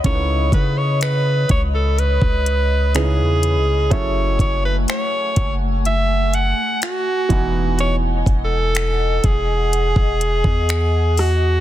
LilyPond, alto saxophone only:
\new Staff \with { instrumentName = "Alto saxophone" } { \time 4/4 \key cis \minor \tempo 4 = 62 cis''8 b'16 cis''16 b'8 cis''16 a'16 b'4 gis'4 | cis''8 cis''16 b'16 cis''8. r16 e''8 fis''8 fis'4 | \tuplet 3/2 { cis''8. r16 a'8~ } a'8 gis'2 fis'8 | }